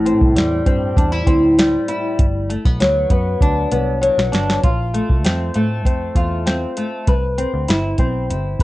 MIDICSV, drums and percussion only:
0, 0, Header, 1, 2, 480
1, 0, Start_track
1, 0, Tempo, 610376
1, 1724, Time_signature, 4, 2, 24, 8
1, 6787, End_track
2, 0, Start_track
2, 0, Title_t, "Drums"
2, 49, Note_on_c, 9, 42, 65
2, 128, Note_off_c, 9, 42, 0
2, 167, Note_on_c, 9, 36, 89
2, 246, Note_off_c, 9, 36, 0
2, 286, Note_on_c, 9, 42, 93
2, 300, Note_on_c, 9, 38, 103
2, 365, Note_off_c, 9, 42, 0
2, 379, Note_off_c, 9, 38, 0
2, 519, Note_on_c, 9, 36, 79
2, 520, Note_on_c, 9, 42, 64
2, 598, Note_off_c, 9, 36, 0
2, 599, Note_off_c, 9, 42, 0
2, 759, Note_on_c, 9, 36, 85
2, 770, Note_on_c, 9, 42, 89
2, 838, Note_off_c, 9, 36, 0
2, 848, Note_off_c, 9, 42, 0
2, 997, Note_on_c, 9, 36, 84
2, 1000, Note_on_c, 9, 42, 71
2, 1076, Note_off_c, 9, 36, 0
2, 1078, Note_off_c, 9, 42, 0
2, 1248, Note_on_c, 9, 42, 86
2, 1253, Note_on_c, 9, 38, 102
2, 1326, Note_off_c, 9, 42, 0
2, 1331, Note_off_c, 9, 38, 0
2, 1480, Note_on_c, 9, 42, 73
2, 1559, Note_off_c, 9, 42, 0
2, 1722, Note_on_c, 9, 42, 92
2, 1723, Note_on_c, 9, 36, 103
2, 1801, Note_off_c, 9, 42, 0
2, 1802, Note_off_c, 9, 36, 0
2, 1968, Note_on_c, 9, 42, 62
2, 2046, Note_off_c, 9, 42, 0
2, 2086, Note_on_c, 9, 36, 86
2, 2165, Note_off_c, 9, 36, 0
2, 2204, Note_on_c, 9, 42, 91
2, 2218, Note_on_c, 9, 38, 107
2, 2283, Note_off_c, 9, 42, 0
2, 2297, Note_off_c, 9, 38, 0
2, 2439, Note_on_c, 9, 36, 78
2, 2439, Note_on_c, 9, 42, 65
2, 2518, Note_off_c, 9, 36, 0
2, 2518, Note_off_c, 9, 42, 0
2, 2680, Note_on_c, 9, 36, 85
2, 2691, Note_on_c, 9, 42, 83
2, 2759, Note_off_c, 9, 36, 0
2, 2770, Note_off_c, 9, 42, 0
2, 2922, Note_on_c, 9, 42, 67
2, 3001, Note_off_c, 9, 42, 0
2, 3168, Note_on_c, 9, 42, 89
2, 3246, Note_off_c, 9, 42, 0
2, 3294, Note_on_c, 9, 38, 76
2, 3373, Note_off_c, 9, 38, 0
2, 3406, Note_on_c, 9, 42, 70
2, 3417, Note_on_c, 9, 38, 92
2, 3484, Note_off_c, 9, 42, 0
2, 3496, Note_off_c, 9, 38, 0
2, 3536, Note_on_c, 9, 38, 74
2, 3615, Note_off_c, 9, 38, 0
2, 3644, Note_on_c, 9, 42, 78
2, 3646, Note_on_c, 9, 36, 100
2, 3723, Note_off_c, 9, 42, 0
2, 3724, Note_off_c, 9, 36, 0
2, 3888, Note_on_c, 9, 42, 67
2, 3967, Note_off_c, 9, 42, 0
2, 4008, Note_on_c, 9, 36, 81
2, 4086, Note_off_c, 9, 36, 0
2, 4125, Note_on_c, 9, 42, 85
2, 4139, Note_on_c, 9, 38, 101
2, 4203, Note_off_c, 9, 42, 0
2, 4218, Note_off_c, 9, 38, 0
2, 4358, Note_on_c, 9, 42, 62
2, 4437, Note_off_c, 9, 42, 0
2, 4601, Note_on_c, 9, 36, 79
2, 4612, Note_on_c, 9, 42, 84
2, 4680, Note_off_c, 9, 36, 0
2, 4690, Note_off_c, 9, 42, 0
2, 4839, Note_on_c, 9, 36, 70
2, 4842, Note_on_c, 9, 42, 68
2, 4918, Note_off_c, 9, 36, 0
2, 4921, Note_off_c, 9, 42, 0
2, 5087, Note_on_c, 9, 42, 81
2, 5092, Note_on_c, 9, 38, 99
2, 5166, Note_off_c, 9, 42, 0
2, 5171, Note_off_c, 9, 38, 0
2, 5324, Note_on_c, 9, 42, 66
2, 5402, Note_off_c, 9, 42, 0
2, 5564, Note_on_c, 9, 42, 82
2, 5565, Note_on_c, 9, 36, 100
2, 5642, Note_off_c, 9, 42, 0
2, 5644, Note_off_c, 9, 36, 0
2, 5808, Note_on_c, 9, 42, 67
2, 5886, Note_off_c, 9, 42, 0
2, 6044, Note_on_c, 9, 42, 81
2, 6058, Note_on_c, 9, 38, 96
2, 6122, Note_off_c, 9, 42, 0
2, 6136, Note_off_c, 9, 38, 0
2, 6276, Note_on_c, 9, 42, 59
2, 6279, Note_on_c, 9, 36, 78
2, 6354, Note_off_c, 9, 42, 0
2, 6358, Note_off_c, 9, 36, 0
2, 6531, Note_on_c, 9, 42, 81
2, 6609, Note_off_c, 9, 42, 0
2, 6759, Note_on_c, 9, 36, 75
2, 6787, Note_off_c, 9, 36, 0
2, 6787, End_track
0, 0, End_of_file